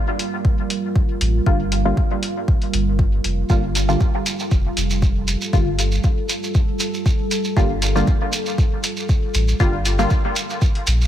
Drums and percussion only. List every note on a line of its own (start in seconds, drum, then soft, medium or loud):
0.19 closed hi-hat medium
0.45 kick loud
0.70 closed hi-hat medium
0.96 kick loud
1.21 closed hi-hat medium
1.46 kick loud
1.72 closed hi-hat medium
1.97 kick loud
2.23 closed hi-hat medium
2.48 kick loud
2.62 closed hi-hat soft
2.73 closed hi-hat medium
2.99 kick loud
3.24 closed hi-hat medium
3.50 kick loud
3.50 shekere soft
3.75 closed hi-hat medium
3.75 shekere medium
3.89 shekere medium
4.01 kick loud
4.01 shekere soft
4.26 closed hi-hat medium
4.26 shekere medium
4.39 shekere medium
4.51 kick loud
4.51 shekere soft
4.77 closed hi-hat medium
4.77 shekere medium
4.90 shekere medium
5.02 kick loud
5.02 shekere soft
5.28 closed hi-hat medium
5.28 shekere medium
5.41 shekere medium
5.53 kick loud
5.53 shekere soft
5.79 closed hi-hat medium
5.79 shekere medium
5.92 shekere medium
6.03 kick loud
6.03 shekere soft
6.29 closed hi-hat medium
6.29 shekere medium
6.43 shekere medium
6.54 kick loud
6.54 shekere soft
6.79 closed hi-hat medium
6.79 shekere medium
6.94 shekere medium
7.06 kick loud
7.06 shekere soft
7.31 closed hi-hat medium
7.31 shekere medium
7.44 shekere soft
7.57 kick loud
7.57 shekere soft
7.82 closed hi-hat medium
7.82 shekere medium
7.96 shekere medium
8.07 kick loud
8.07 shekere soft
8.33 closed hi-hat medium
8.33 shekere medium
8.46 shekere medium
8.58 kick loud
8.58 shekere soft
8.84 closed hi-hat medium
8.84 shekere medium
8.97 shekere soft
9.09 kick loud
9.09 shekere soft
9.34 closed hi-hat medium
9.34 shekere medium
9.48 shekere medium
9.60 kick loud
9.60 shekere soft
9.85 closed hi-hat medium
9.85 shekere medium
9.99 shekere medium
10.10 kick loud
10.10 shekere soft
10.36 closed hi-hat medium
10.36 shekere medium
10.50 shekere soft
10.61 kick loud
10.61 shekere soft
10.75 closed hi-hat soft
10.87 closed hi-hat medium
10.87 shekere medium
11.01 shekere medium